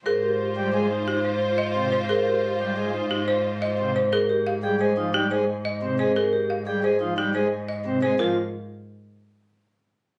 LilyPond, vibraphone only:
\new Staff \with { instrumentName = "Vibraphone" } { \time 6/4 \key aes \major \tempo 4 = 177 bes'8 g'8 r4. ees'8 r2. | bes'8 g'8 r4. ees'8 r2. | bes'8 g'8 r8 aes'8 r8 ees'8 r2 c'8 r8 | bes'8 g'8 r8 aes'8 r8 ees'8 r2 c'8 r8 |
f'8 r1 r4. | }